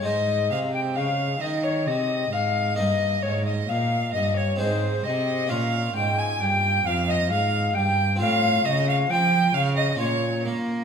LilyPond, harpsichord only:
<<
  \new Staff \with { instrumentName = "Harpsichord" } { \time 3/4 \key aes \major \tempo 4 = 66 <aes ees' c''>2. | <bes ees' bes'>2 <c' ees' aes'>4 | <bes des' f'>2. | <c' f'>2 <des' f'>4 | }
  \new Staff \with { instrumentName = "Harpsichord" } { \clef bass \time 3/4 \key aes \major aes,8 c8 des8 ees8 c8 aes,8 | g,8 aes,8 bes,8 g,8 aes,8 c8 | bes,8 aes,8 g,8 f,8 aes,8 g,8 | a,8 des8 f8 des8 bes,8 bes8 | }
>>